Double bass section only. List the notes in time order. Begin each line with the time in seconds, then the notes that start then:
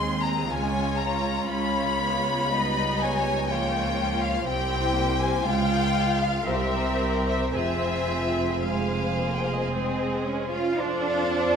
Already playing: D#2
0.49 C#2
1.52 C#2
4.47 C2
5.46 C#2
6.48 C2
7.54 F1
10.79 F2